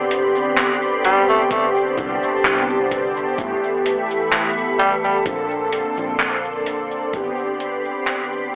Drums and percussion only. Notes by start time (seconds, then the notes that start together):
0.11 closed hi-hat
0.36 cabasa
0.57 clap, closed hi-hat, cabasa
0.82 cabasa
1.04 closed hi-hat
1.29 cabasa
1.51 kick, closed hi-hat, cabasa
1.76 cabasa
1.98 kick, closed hi-hat
2.23 cabasa
2.45 clap, closed hi-hat, cabasa
2.70 cabasa
2.91 kick, closed hi-hat
3.17 cabasa
3.38 kick, closed hi-hat, cabasa
3.64 cabasa
3.86 closed hi-hat
4.11 cabasa
4.33 clap, closed hi-hat, cabasa
4.58 cabasa
4.79 closed hi-hat
5.04 cabasa
5.26 kick, closed hi-hat, cabasa
5.51 cabasa
5.73 closed hi-hat
5.97 cabasa
6.20 clap, closed hi-hat, cabasa
6.44 cabasa
6.66 closed hi-hat
6.91 cabasa
7.13 kick, closed hi-hat, cabasa
7.39 cabasa
7.60 closed hi-hat
7.85 cabasa
8.07 clap, closed hi-hat, cabasa
8.32 cabasa